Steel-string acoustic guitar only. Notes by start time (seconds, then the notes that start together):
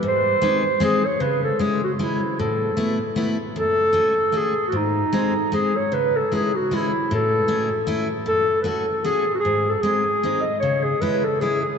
0.03 G#2
0.42 G#3 C4 D#4
0.80 G#3 C4 D#4
1.20 C#3
1.59 G#3 C#4 E4
1.99 G#3 C#4 E4
2.39 A2
2.77 A3 B3 E4
3.16 A3 B3 E4
3.56 F#2
3.93 A3 C#4 F#4
4.32 A3 C#4 F#4
4.72 G#2
5.13 G#3 C4 D#4
5.52 G#3 C4 D#4
5.92 C#3
6.32 G#3 C#4 E4
6.71 G#3 C#4 E4
7.11 A2
7.48 A3 C#4 E4
7.87 A3 C#4 E4
8.26 F#2
8.64 A3 C#4 F#4
9.04 A3 C#4 F#4
9.45 G#2
9.83 G#3 C4 D#4
10.23 G#3 C4 D#4
10.63 C#3
11.02 G#3 C#4 E4
11.41 G#3 C#4 E4